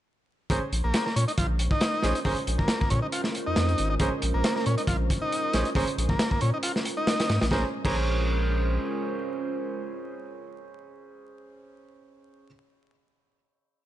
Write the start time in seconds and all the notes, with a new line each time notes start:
0.50 A#1 G#3 A#3 C#4 F4 G#4 A#4 C5, kick, closed hi-hat
0.72 A#1, closed hi-hat
0.84 A#1 A#3
0.94 snare, closed hi-hat
1.06 A#3, snare
1.16 A#2 C#4, closed hi-hat
1.28 D#4, closed hi-hat
1.38 A#1 F4, kick, closed hi-hat
1.59 closed hi-hat
1.71 D#4, kick
1.81 snare, closed hi-hat
2.02 A#1 C#4 G#4 C5, snare, closed hi-hat
2.15 D#4, closed hi-hat
2.25 A#1 A#3 C#4 G#4 C5, kick, open hi-hat
2.37 closed hi-hat
2.47 A#1, closed hi-hat
2.59 A#1 A#3, kick
2.68 snare, closed hi-hat
2.80 A#3, kick
2.90 A#2 C#4, kick, closed hi-hat
3.02 D#4
3.12 F4, closed hi-hat
3.24 snare
3.35 closed hi-hat
3.47 F2 D#4
3.56 F2, snare, closed hi-hat
3.69 closed hi-hat
3.78 G#1, closed hi-hat
3.90 D#4
4.00 A#1 A#3 C#4 G#4 C5, kick, closed hi-hat
4.22 A#1, closed hi-hat
4.34 A#1 A#3
4.44 snare, closed hi-hat
4.56 A#3, snare
4.66 A#2 C#4, closed hi-hat
4.78 D#4, closed hi-hat
4.87 A#1 F4, kick, closed hi-hat
5.10 kick, closed hi-hat
5.22 D#4
5.32 closed hi-hat
5.53 A#1 C#4 G#4 C5, snare, closed hi-hat
5.65 D#4, closed hi-hat
5.75 A#1 A#3 C#4 G#4 C5, kick, open hi-hat
5.87 closed hi-hat
5.98 A#1, closed hi-hat
6.09 A#1 A#3, kick
6.19 snare, closed hi-hat
6.31 A#3, kick
6.41 A#2 C#4, closed hi-hat
6.54 D#4
6.63 F4, closed hi-hat
6.76 snare
6.85 closed hi-hat
6.97 D#4
7.07 snare, closed hi-hat
7.20 snare, closed hi-hat
7.29 G#2, snare, closed hi-hat
7.41 A#1 D#4, snare, closed hi-hat
7.51 A#1 G#3 A#3 C#4 F4 G#4 A#4 C5, kick, snare
7.85 A#1 A#3 C#4 G#4 C5, kick, crash